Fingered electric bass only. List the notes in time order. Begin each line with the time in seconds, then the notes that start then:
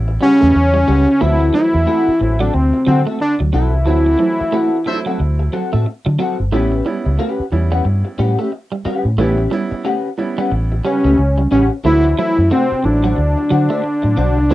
Already playing: A1
0.43 E2
0.56 E2
0.89 C#2
1.22 D2
1.75 E2
2.08 muted fingered electric bass stroke
2.21 A1
2.54 D2
2.87 D3
3.40 D2
3.54 B1
3.74 C2
3.87 D2
4.41 muted fingered electric bass stroke
5.20 D2
5.74 A2
6.07 D3
6.40 G1
6.53 A1
7.06 C#2
7.40 muted fingered electric bass stroke
7.52 E2
7.85 G2
8.19 A2
8.86 muted fingered electric bass stroke
9.05 A2
9.18 A1
9.72 muted fingered electric bass stroke
10.52 A1
11.05 C#2
11.19 C#2
11.52 A1
11.85 D2
12.38 F#2
12.72 muted fingered electric bass stroke
12.85 A1
13.18 D2
13.52 D3
14.04 A2
14.17 B1
14.38 C2
14.51 D2